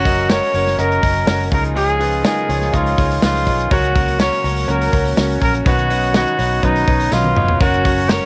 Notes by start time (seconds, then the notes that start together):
Already playing: F#1 F#3 C#4 F#4 A#4 C#5
0.05 C#4 F#4 A#4 D#5, kick, hi-hat pedal, open hi-hat
0.18 open hi-hat
0.29 F#3 C#4 F#4 A#4 C#5, snare, hi-hat pedal, open hi-hat, tambourine
0.42 hi-hat pedal, open hi-hat
0.53 F#1 C#4 F#4 A#4 C#5, hi-hat pedal, open hi-hat
0.67 snare, hi-hat pedal, open hi-hat
0.77 F#1 F#3 C#4 F#4 A#4 D#5, hi-hat pedal, open hi-hat
0.91 hi-hat pedal
1.02 F#1 C#4 F#4 A#4 D#5, kick, hi-hat pedal, open hi-hat
1.16 open hi-hat
1.27 F#1 F#3 C#4 F#4 A#4 C#5, snare, hi-hat pedal, open hi-hat, tambourine
1.40 hi-hat pedal, open hi-hat
1.50 C#2 C#3 F3 C#4 D#4 F4 G#4 A#4 C#5, kick, hi-hat pedal, open hi-hat
1.64 hi-hat pedal, open hi-hat
1.75 C#3 G#3 D#4 F4 G#4, hi-hat pedal, open hi-hat
1.89 hi-hat pedal
2.00 D#4 F4 G#4 B4, hi-hat pedal, open hi-hat
2.13 open hi-hat
2.23 C#3 G#3 D#4 F4 G#4 A#4, snare, hi-hat pedal, open hi-hat, tambourine
2.37 hi-hat pedal
2.48 C#2 D#4 F4 G#4 C#5, hi-hat pedal, open hi-hat
2.62 snare, open hi-hat
2.73 C#2 G#3 D#4 F4 G#4 C#5, kick, hi-hat pedal, open hi-hat
2.86 hi-hat pedal, open hi-hat
2.98 C#2 D#4 F4 G#4 C#5, kick, hi-hat pedal, open hi-hat
3.11 hi-hat pedal, open hi-hat
3.22 C#2 C#3 G#3 D#4 F4 G#4 B4, snare, hi-hat pedal, open hi-hat, tambourine
3.35 hi-hat pedal, open hi-hat
3.46 B1 D#4 F4 G#4 C#5, kick, hi-hat pedal, open hi-hat
3.59 hi-hat pedal, open hi-hat
3.71 C#2 C#3 F#3 A#3 C#4 F#4 A#4 C#5, kick, hi-hat pedal, open hi-hat
3.83 hi-hat pedal, open hi-hat
3.95 C#4 F#4 A#4 C#5, kick, hi-hat pedal, open hi-hat
4.08 hi-hat pedal, open hi-hat
4.19 C#3 F#3 C#4 F#4 A#4 C#5, snare, hi-hat pedal, open hi-hat, tambourine
4.32 hi-hat pedal, open hi-hat
4.44 C#2 C#4 F#4 A#4 C#5, hi-hat pedal, open hi-hat
4.56 hi-hat pedal, open hi-hat
4.68 C#2 F#3 C#4 F#4 A#4 C#5, hi-hat pedal, open hi-hat
4.81 hi-hat pedal, open hi-hat
4.92 C#2 C#4 F#4 A#4 C#5, kick, hi-hat pedal, open hi-hat
5.05 hi-hat pedal, open hi-hat
5.17 C#2 C#3 F#3 C#4 F#4 A#4 C#5, snare, hi-hat pedal, open hi-hat, tambourine
5.30 hi-hat pedal, open hi-hat
5.40 A#1 C#4 F#4 A#4 C#5, kick, hi-hat pedal, open hi-hat
5.54 hi-hat pedal, open hi-hat
5.65 B1 B2 D#3 F#3 B3 C#4 D#4 F#4 B4 C#5, kick, hi-hat pedal, open hi-hat
5.78 hi-hat pedal, open hi-hat
5.89 F#3 C#4 D#4 F#4 B4 C#5, hi-hat pedal, open hi-hat
6.02 hi-hat pedal, open hi-hat
6.14 B2 D#3 F#3 C#4 D#4 F#4 B4 C#5, snare, hi-hat pedal, open hi-hat, tambourine
6.27 hi-hat pedal
6.38 B1 F#3 C#4 D#4 F#4 B4 C#5, hi-hat pedal, open hi-hat
6.51 open hi-hat
6.62 B1 F#3 C#4 D#4 F#4 B4 C#5, kick, hi-hat pedal, open hi-hat
6.75 hi-hat pedal, open hi-hat
6.87 B1 F#3 C#4 D#4 F#4 B4 C#5, kick, hi-hat pedal, open hi-hat
7.00 hi-hat pedal, open hi-hat
7.11 B1 B2 D#3 F#3 C#4 D#4 F4 F#4 B4 D#5, snare, tambourine
7.24 high tom
7.35 F1 F#3 C#4 D#4 F#4 B4 C#5, mid tom
7.48 floor tom
7.60 F#1 F#3 C#4 F#4 A#4 C#5, kick, hi-hat pedal, open hi-hat
7.73 hi-hat pedal, open hi-hat
7.84 C#4 F#4 A#4 C#5, kick, hi-hat pedal, open hi-hat
7.97 hi-hat pedal, open hi-hat
8.09 F#3 C#4 F#4 A#4 C#5, snare, hi-hat pedal, open hi-hat, tambourine
8.22 hi-hat pedal, open hi-hat